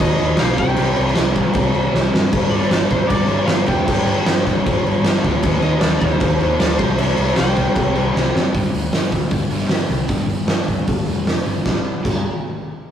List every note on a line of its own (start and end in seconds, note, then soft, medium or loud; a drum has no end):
0.00 0.14 D#2 loud
0.00 0.17 D#3 medium
0.00 0.18 A#3 loud
0.00 0.18 D#4 medium
0.00 0.39 D#5 loud
0.00 kick loud
0.00 crash loud
0.18 0.34 D#2 loud
0.18 0.35 D#3 medium
0.18 0.35 A#3 medium
0.18 0.37 D#4 medium
0.18 crash medium
0.37 0.55 D#3 medium
0.37 0.56 A#3 loud
0.37 0.56 D#4 loud
0.37 0.58 F5 loud
0.37 snare loud
0.37 crash medium
0.41 0.54 B1 medium
0.56 0.73 C2 medium
0.56 0.74 C3 medium
0.56 0.77 G3 medium
0.56 0.76 C4 loud
0.56 1.70 G5 loud
0.56 kick loud
0.56 crash medium
0.76 0.92 C2 medium
0.76 0.93 C3 loud
0.76 0.95 G3 medium
0.76 0.95 C4 loud
0.76 crash medium
0.94 1.11 C3 medium
0.94 1.13 G3 medium
0.94 1.13 C4 medium
0.94 crash medium
0.98 1.12 C2 loud
1.07 snare soft
1.13 1.33 C3 medium
1.13 1.34 G3 medium
1.13 1.35 C4 medium
1.13 snare loud
1.13 crash medium
1.17 1.45 C2 medium
1.34 1.51 C3 loud
1.34 1.53 G3 loud
1.34 1.53 C4 loud
1.34 kick medium
1.34 crash medium
1.52 1.69 C2 loud
1.52 1.71 C3 medium
1.52 1.73 G3 loud
1.52 1.73 C4 medium
1.52 kick loud
1.52 crash medium
1.73 1.88 C2 medium
1.73 1.91 C3 medium
1.73 1.93 G3 medium
1.73 1.93 C4 medium
1.73 crash medium
1.92 2.08 C2 loud
1.92 2.10 C3 medium
1.92 2.12 G3 loud
1.92 2.13 C4 loud
1.92 snare medium
2.11 2.28 G2 medium
2.11 2.30 C3 medium
2.11 2.33 G3 medium
2.11 2.32 C4 medium
2.11 snare loud
2.32 2.47 G1 medium
2.32 2.49 G2 loud
2.32 2.50 D3 loud
2.32 2.51 G3 loud
2.32 kick loud
2.32 crash loud
2.50 2.65 G1 loud
2.50 2.70 G2 medium
2.50 2.70 D3 medium
2.50 2.72 G3 medium
2.50 2.87 D5 medium
2.50 crash medium
2.62 snare soft
2.70 2.84 G1 medium
2.70 2.89 G2 medium
2.70 2.89 D3 medium
2.70 2.91 G3 medium
2.70 snare loud
2.70 crash medium
2.90 3.05 G1 medium
2.90 3.09 G2 loud
2.90 3.09 D3 loud
2.90 3.12 G3 loud
2.90 3.09 C5 medium
2.90 kick medium
2.90 crash medium
3.07 3.24 G1 loud
3.07 3.27 G2 loud
3.07 3.29 D3 loud
3.07 3.48 D5 medium
3.07 kick loud
3.07 crash medium
3.12 3.29 G3 loud
3.28 3.43 G1 medium
3.28 3.46 G2 medium
3.28 3.47 D3 medium
3.28 3.48 G3 loud
3.28 crash medium
3.46 3.62 G1 medium
3.46 3.65 G2 loud
3.46 3.66 D3 loud
3.46 3.68 G3 loud
3.46 3.67 F5 loud
3.46 snare loud
3.46 crash medium
3.66 3.82 F1 medium
3.66 3.85 G2 medium
3.66 3.87 D3 medium
3.66 3.88 G3 loud
3.66 4.84 G5 loud
3.66 kick medium
3.66 crash medium
3.86 4.02 G1 medium
3.86 4.05 G2 loud
3.86 4.07 D3 loud
3.86 4.08 G3 loud
3.86 kick loud
3.86 crash loud
4.06 4.20 G1 medium
4.06 4.24 G2 loud
4.06 4.24 D3 medium
4.06 4.26 G3 medium
4.06 crash medium
4.25 4.54 G1 medium
4.25 4.44 G2 medium
4.25 4.44 D3 medium
4.25 4.46 G3 loud
4.25 snare loud
4.25 crash medium
4.45 4.63 G2 loud
4.45 4.64 D3 loud
4.45 4.66 G3 loud
4.45 kick medium
4.45 snare soft
4.45 crash medium
4.64 4.80 G1 loud
4.64 4.83 G2 medium
4.64 4.84 D3 medium
4.64 4.85 G3 loud
4.64 kick loud
4.64 crash medium
4.83 4.98 G1 medium
4.83 5.02 G2 medium
4.83 5.04 D3 medium
4.83 5.05 G3 loud
4.83 crash medium
5.02 5.17 G1 loud
5.02 5.22 G2 loud
5.02 5.23 D3 loud
5.02 5.25 G3 loud
5.02 snare loud
5.02 crash medium
5.23 5.38 D2 medium
5.23 5.41 G2 medium
5.23 5.41 D3 loud
5.23 5.42 G3 medium
5.23 kick medium
5.23 crash medium
5.42 5.57 D#2 loud
5.42 5.60 D#3 loud
5.42 5.61 A#3 loud
5.42 5.62 D#4 loud
5.42 kick loud
5.42 crash medium
5.60 5.75 D#2 loud
5.60 5.80 D#3 medium
5.60 5.81 A#3 loud
5.60 5.81 D#4 loud
5.60 5.79 D#5 loud
5.60 crash medium
5.79 5.95 D#2 medium
5.79 6.00 D#3 loud
5.79 6.01 A#3 medium
5.79 6.02 D#4 loud
5.79 6.00 D5 medium
5.79 snare loud
5.79 crash medium
5.99 6.16 D#2 medium
5.99 6.19 D#3 loud
5.99 6.19 A#3 loud
5.99 6.21 D#4 loud
5.99 6.54 C5 loud
5.99 kick medium
5.99 snare soft
5.99 crash medium
6.20 6.35 D#2 loud
6.20 6.39 D#3 medium
6.20 6.39 A#3 medium
6.20 6.40 D#4 loud
6.20 kick loud
6.20 crash medium
6.40 6.55 D#2 loud
6.40 6.57 D#3 medium
6.40 6.59 A#3 medium
6.40 6.58 D#4 loud
6.40 crash medium
6.58 6.80 D2 loud
6.58 6.77 D#3 loud
6.58 6.78 A#3 loud
6.58 6.78 D#4 loud
6.58 6.77 D5 loud
6.58 snare loud
6.58 crash loud
6.77 6.94 C2 loud
6.77 6.96 C3 loud
6.77 6.96 G3 loud
6.77 6.97 C4 loud
6.77 6.96 C5 loud
6.77 kick loud
6.77 crash medium
6.97 7.12 C2 loud
6.97 7.15 C3 loud
6.97 7.16 G3 loud
6.97 7.18 C4 loud
6.97 7.38 E5 loud
6.97 crash loud
7.16 7.31 C2 medium
7.16 7.34 C3 medium
7.16 7.34 G3 loud
7.16 7.35 C4 loud
7.16 crash medium
7.28 snare soft
7.35 7.66 C2 medium
7.35 7.55 C3 medium
7.35 7.56 G3 loud
7.35 7.57 C4 medium
7.35 8.11 G5 medium
7.35 snare loud
7.35 crash medium
7.56 7.74 C3 loud
7.56 7.75 G3 loud
7.56 7.75 C4 loud
7.56 kick medium
7.56 crash medium
7.75 7.90 C2 loud
7.75 7.92 C3 loud
7.75 7.94 G3 loud
7.75 7.95 C4 medium
7.75 kick loud
7.75 crash medium
7.94 8.09 C2 medium
7.94 8.13 C3 medium
7.94 8.14 G3 medium
7.94 8.14 C4 medium
7.94 crash medium
8.14 8.29 C2 medium
8.14 8.33 C3 loud
8.14 8.34 G3 medium
8.14 8.34 C4 loud
8.14 snare medium
8.34 8.49 F#1 medium
8.34 8.52 C3 medium
8.34 8.53 G3 medium
8.34 8.53 C4 medium
8.34 snare medium
8.53 8.68 G1 loud
8.53 8.71 G2 medium
8.53 8.72 D3 loud
8.53 8.72 G3 loud
8.53 kick loud
8.53 open hi-hat medium
8.73 8.86 D2 medium
8.73 8.90 G2 medium
8.73 8.90 D3 medium
8.73 open hi-hat medium
8.92 9.18 G1 medium
8.92 9.09 G2 medium
8.92 9.10 D3 medium
8.92 9.11 G3 loud
8.92 snare loud
8.92 open hi-hat medium
9.10 9.28 G2 medium
9.10 9.29 D3 medium
9.10 kick medium
9.10 open hi-hat medium
9.30 9.44 G1 medium
9.30 9.48 G2 medium
9.30 9.48 D3 medium
9.30 kick loud
9.30 open hi-hat medium
9.50 9.64 G1 medium
9.50 9.68 G2 medium
9.50 9.69 D3 medium
9.50 9.69 G3 loud
9.50 open hi-hat medium
9.59 snare soft
9.69 9.83 G1 medium
9.69 9.87 G2 medium
9.69 9.88 D3 medium
9.69 snare loud
9.69 open hi-hat medium
9.89 10.02 C2 medium
9.89 10.07 G2 medium
9.89 10.07 D3 medium
9.89 open hi-hat medium
10.08 10.22 G1 medium
10.08 10.26 G2 medium
10.08 10.26 D3 loud
10.08 10.27 G3 loud
10.08 kick loud
10.08 open hi-hat medium
10.26 10.40 G1 medium
10.26 10.45 G2 medium
10.26 10.45 D3 medium
10.26 open hi-hat medium
10.46 10.65 G2 loud
10.46 10.60 G2 medium
10.46 10.65 D3 medium
10.46 10.66 G3 medium
10.46 snare loud
10.46 open hi-hat medium
10.66 10.81 G1 medium
10.66 10.84 G2 medium
10.66 10.84 D3 medium
10.66 kick medium
10.66 open hi-hat medium
10.87 11.00 G1 loud
10.87 11.04 G2 medium
10.87 11.04 D3 medium
10.87 kick loud
10.87 open hi-hat medium
11.05 11.20 F1 medium
11.05 11.24 G2 medium
11.05 11.24 D3 medium
11.05 11.25 G3 loud
11.05 open hi-hat soft
11.25 11.38 F1 medium
11.25 11.44 G2 medium
11.25 11.44 D3 medium
11.25 snare loud
11.25 open hi-hat medium
11.45 11.58 G1 medium
11.45 11.63 G2 medium
11.45 11.62 D3 medium
11.45 open hi-hat soft
11.64 11.76 G1 medium
11.64 11.76 G2 medium
11.64 11.76 D3 medium
11.64 11.77 G3 loud
11.64 kick loud
11.64 snare medium
12.03 12.23 G1 medium
12.03 12.19 G2 medium
12.03 12.19 D3 medium
12.03 12.19 G3 loud
12.03 kick loud
12.03 crash medium